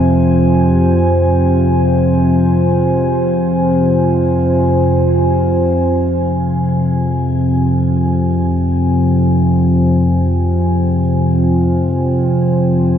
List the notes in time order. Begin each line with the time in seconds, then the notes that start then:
Already playing: F2 C3 F4 C5 G5 G#5
5.89 F2 C3 F4
6.04 C5
8.02 G5